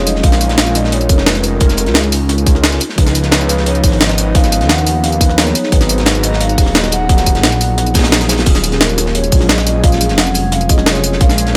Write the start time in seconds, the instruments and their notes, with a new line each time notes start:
Already playing: detuned saw bass F1, analog synth pad F#3 G#3 C#4 D#4, tine electric piano F#3 C#4 F4 G#4
0.07 vibraphone D#5, closed hi-hat, tambourine
0.15 snare
0.21 detuned saw bass A#1, tine electric piano G#3 C#4 F4, vibraphone F5, kick, closed hi-hat
0.26 tine electric piano A#4
0.32 snare, tambourine
0.41 closed hi-hat, tambourine
0.49 snare, closed hi-hat
0.58 snare, closed hi-hat
0.67 tambourine
0.75 vibraphone D#5, snare, closed hi-hat, tambourine
0.84 snare
0.92 vibraphone C#5, closed hi-hat
1.01 closed hi-hat, tambourine
1.07 detuned saw bass F1, tine electric piano G#3 C#4 F4, kick, closed hi-hat, tambourine
1.12 tine electric piano A#4
1.18 snare
1.26 vibraphone B4, snare, closed hi-hat
1.35 snare, tambourine
1.43 vibraphone A#4, closed hi-hat, tambourine
1.60 tine electric piano G#3 C#4 F4 A#4, kick, closed hi-hat
1.69 snare, closed hi-hat, tambourine
1.77 closed hi-hat, tambourine
1.86 detuned saw bass C#2, snare, closed hi-hat
1.94 snare, closed hi-hat
2.04 tambourine
2.12 closed hi-hat, open hi-hat, tambourine
2.29 snare, closed hi-hat
2.38 closed hi-hat, tambourine
2.45 tine electric piano G#3 C#4 F4 C#5, kick, closed hi-hat, tambourine
2.54 tine electric piano G#3 C#4 F4 A#4, snare
2.64 snare, closed hi-hat
2.72 snare, tambourine
2.80 analog synth pad F3 B3 D#4, closed hi-hat, tambourine
2.89 snare
2.96 detuned saw bass C#2, tine electric piano F3 C#4 D#4, kick, closed hi-hat
3.00 tine electric piano B4
3.07 snare, tambourine
3.15 closed hi-hat, tambourine
3.23 snare, closed hi-hat
3.32 vibraphone B4, snare, closed hi-hat
3.39 vibraphone C#5, tambourine
3.46 vibraphone B4, snare, closed hi-hat, tambourine
3.57 snare
3.66 vibraphone C#5, closed hi-hat
3.75 closed hi-hat, tambourine
3.81 detuned saw bass G#1, tine electric piano F3 C#4 D#4, kick, closed hi-hat, open hi-hat, tambourine
3.86 tine electric piano B4
3.92 snare
4.01 snare, closed hi-hat
4.09 snare, tambourine
4.18 closed hi-hat, tambourine
4.34 tine electric piano F3 C#4 D#4 B4, vibraphone F5, kick, closed hi-hat
4.43 snare, tambourine
4.52 closed hi-hat, tambourine
4.61 detuned saw bass D#2, snare, closed hi-hat
4.69 vibraphone F#5, snare, closed hi-hat
4.78 tambourine
4.86 closed hi-hat, open hi-hat, tambourine
5.04 vibraphone F5, snare, closed hi-hat
5.12 closed hi-hat, tambourine
5.20 tine electric piano F3 C#4 D#4 B4, kick, closed hi-hat, tambourine
5.29 snare
5.37 tine electric piano F#3 B3 D#4 G#4, vibraphone C#5, snare, closed hi-hat
5.47 snare, tambourine
5.55 analog synth pad F#4 A#5, closed hi-hat, tambourine
5.63 snare
5.70 detuned saw bass G#1, tine electric piano F#3 B3 D#4, vibraphone B4, kick, closed hi-hat
5.75 tine electric piano G#4
5.81 snare, tambourine
5.89 closed hi-hat, tambourine
5.98 snare, closed hi-hat
6.06 snare, closed hi-hat
6.15 tambourine
6.23 vibraphone D#5, snare, closed hi-hat, tambourine
6.33 snare
6.41 vibraphone F5, closed hi-hat
6.49 closed hi-hat, tambourine
6.55 detuned saw bass D#1, tine electric piano F#3 B3 D#4, kick, closed hi-hat, open hi-hat, tambourine
6.60 tine electric piano G#4
6.66 snare
6.75 vibraphone D#5, snare, closed hi-hat
6.84 snare, tambourine
6.92 vibraphone F#5, closed hi-hat, tambourine
7.08 tine electric piano F#3 B3 D#4 G#4, kick, closed hi-hat
7.17 snare, closed hi-hat, tambourine
7.26 kick, closed hi-hat, tambourine
7.35 detuned saw bass A#1, snare, closed hi-hat
7.43 snare, closed hi-hat
7.52 tambourine
7.61 closed hi-hat, open hi-hat, tambourine
7.78 snare, closed hi-hat
7.86 closed hi-hat, tambourine
7.94 tine electric piano F#3 B3 D#4 G#4, kick, snare, closed hi-hat, tambourine
7.99 snare, closed hi-hat
8.04 snare, closed hi-hat
8.11 tine electric piano F#3 B3 D#4 G#4, snare, closed hi-hat
8.21 snare, tambourine
8.29 snare, closed hi-hat, tambourine
8.38 snare, closed hi-hat
8.44 detuned saw bass D#1, tine electric piano F#3 C#4 F4, analog synth pad F#3 G#3 C#4 G#4, kick, closed hi-hat, crash
8.49 tine electric piano G#4
8.55 snare, tambourine
8.64 closed hi-hat, tambourine
8.72 snare, closed hi-hat
8.81 vibraphone A#4, snare, closed hi-hat
8.89 tambourine
8.98 snare, closed hi-hat, tambourine
9.06 snare
9.15 vibraphone C#5, closed hi-hat
9.24 closed hi-hat, tambourine
9.30 detuned saw bass A#1, tine electric piano F#3 C#4 F4, kick, closed hi-hat, open hi-hat, tambourine
9.35 tine electric piano G#4
9.41 snare
9.49 vibraphone D#5, snare, closed hi-hat
9.58 snare, tambourine
9.67 vibraphone D#5, closed hi-hat, tambourine
9.82 tine electric piano F#3 C#4 F4 G#4, vibraphone F5, kick, closed hi-hat
9.92 snare, tambourine
10.01 closed hi-hat, tambourine
10.09 detuned saw bass F1, snare, closed hi-hat
10.18 vibraphone F#5, snare, closed hi-hat
10.26 tambourine
10.34 closed hi-hat, open hi-hat, tambourine
10.52 vibraphone F5, snare, closed hi-hat
10.61 closed hi-hat, tambourine
10.68 tine electric piano F#3 C#4 F4 G#4, vibraphone D#5, kick, closed hi-hat, tambourine
10.78 snare
10.85 tine electric piano F#3 C#4 F4 G#4, vibraphone C#5, snare, closed hi-hat
10.95 snare, tambourine
11.04 closed hi-hat, tambourine
11.12 snare
11.18 detuned saw bass A#1, tine electric piano G#3 C#4 F4, vibraphone F5, kick, closed hi-hat
11.23 tine electric piano A#4
11.29 snare, tambourine
11.38 closed hi-hat, tambourine
11.47 snare, closed hi-hat